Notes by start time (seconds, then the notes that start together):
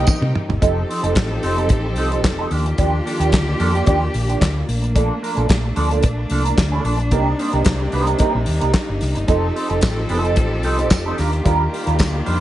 Already playing: A#2 C3 G3 A#3 C4 D#4 G4 A#4 D#5 G5
0.07 muted clean electric guitar stroke, kick, high tom, tambourine
0.21 C3, muted clean electric guitar stroke, mid tom
0.35 mid tom
0.49 G1, muted clean electric guitar stroke, floor tom
0.61 F1 F3 C4 D#4 G4 A4, kick, closed hi-hat
0.89 F3 C4 D#4 C5, open hi-hat
1.03 F1 F3 C4 D#4 A4, closed hi-hat
1.15 A1, muted clean electric guitar stroke, kick, snare, clap, closed hi-hat
1.30 muted clean electric guitar stroke
1.43 F1 F3 C4 D#4 A4, open hi-hat
1.57 F3 C4 D#4 A4, closed hi-hat
1.69 A1, muted clean electric guitar stroke, kick, closed hi-hat
1.84 muted clean electric guitar stroke
1.96 C2 F3 C4 D#4 A4, open hi-hat
2.11 F3 C4 D#4 C5, closed hi-hat
2.24 F1, muted clean electric guitar stroke, kick, snare, clap, closed hi-hat
2.39 F3 C4 D#4 A4
2.51 D#2 D#3 F3 A#3 D4 F4 G4, open hi-hat
2.66 muted clean electric guitar stroke, closed hi-hat
2.78 D#2 F3 A#3 D4 G4, kick, closed hi-hat
3.05 F3 A#3 D4 A4, open hi-hat
3.20 D#2 F3 A#3 D4 G4, closed hi-hat
3.32 D2, muted clean electric guitar stroke, kick, snare, clap, closed hi-hat
3.47 muted clean electric guitar stroke
3.59 F2 F3 A#3 D4 A4, open hi-hat
3.74 F3 A#3 D4 G4, closed hi-hat
3.86 D#2 F3 A#3 D4 G4, kick, closed hi-hat
4.02 muted clean electric guitar stroke
4.14 A#1, muted clean electric guitar stroke, open hi-hat
4.28 F3 A#3 D4 G4, closed hi-hat
4.41 D2, muted clean electric guitar stroke, kick, snare, clap, closed hi-hat
4.56 muted clean electric guitar stroke
4.67 A#1 A3 D4, open hi-hat
4.82 muted clean electric guitar stroke, closed hi-hat
4.95 F3 A#3 D4 A4, kick, closed hi-hat
5.22 F3 A#3 D4 A#4, open hi-hat
5.36 A#1 F3 A#3 D4 A4, closed hi-hat
5.49 A#1, muted clean electric guitar stroke, kick, snare, clap, closed hi-hat
5.63 muted clean electric guitar stroke
5.76 D2 F3 A#3 D4 A4, open hi-hat
5.91 F3 A#3 D4 A4, closed hi-hat
6.03 A#1, muted clean electric guitar stroke, kick, closed hi-hat
6.18 muted clean electric guitar stroke
6.30 C2 F3 A#3 D4 A4, open hi-hat
6.45 F3 A#3 D4 A#4, closed hi-hat
6.58 D2, muted clean electric guitar stroke, kick, snare, clap, closed hi-hat
6.72 F3 A#3 D4 A4
6.84 A#1 F3 A#3 D4 A4, open hi-hat
6.99 muted clean electric guitar stroke, closed hi-hat
7.11 C2 C3 G3 A#3 D#4 G4 A#4, kick, closed hi-hat
7.39 A#3 D#4 G4 C5, open hi-hat
7.53 C2 A#3 D#4 G4 A#4, closed hi-hat
7.65 C2, muted clean electric guitar stroke, kick, snare, clap, closed hi-hat
7.80 muted clean electric guitar stroke
7.92 C2 A#3 D#4 G4 C5, open hi-hat
8.06 A#3 D#4 G4 A#4, closed hi-hat
8.19 A#3 D#4 G4 A#4, kick, closed hi-hat
8.34 A#1, muted clean electric guitar stroke
8.46 D#2, muted clean electric guitar stroke, open hi-hat
8.61 C2 A#3 D#4 G4 A#4, closed hi-hat
8.73 muted clean electric guitar stroke, kick, snare, clap, closed hi-hat
8.87 G1, muted clean electric guitar stroke
9.01 C2, snare, open hi-hat
9.15 G1, muted clean electric guitar stroke, closed hi-hat
9.27 F1 F3 C4 D#4 G4 A4, kick, closed hi-hat
9.55 F3 C4 D#4 C5, open hi-hat
9.69 F1 F3 C4 D#4 A4, closed hi-hat
9.81 A1, muted clean electric guitar stroke, kick, snare, clap, closed hi-hat, tambourine
9.97 muted clean electric guitar stroke
10.09 F1 F3 C4 D#4 A4, open hi-hat
10.24 F3 C4 D#4 A4, closed hi-hat
10.36 A1, muted clean electric guitar stroke, kick, closed hi-hat
10.51 muted clean electric guitar stroke
10.63 C2 F3 C4 D#4 A4, open hi-hat
10.78 F3 C4 D#4 C5, closed hi-hat
10.90 F1, kick, snare, clap, closed hi-hat, tambourine
11.06 F3 C4 D#4 A4
11.17 D#2 D#3 G3 A#3 D4 F4 A#4, snare, open hi-hat
11.32 muted clean electric guitar stroke, closed hi-hat
11.45 D#2 G3 D4 F4 A#4, kick, closed hi-hat
11.72 G3 D4 F4 C5, open hi-hat
11.86 D#2 G3 D4 F4 A#4, closed hi-hat
11.99 D2, muted clean electric guitar stroke, kick, snare, clap, closed hi-hat, tambourine
12.13 muted clean electric guitar stroke
12.26 F2 G3 D4 F4 C5, open hi-hat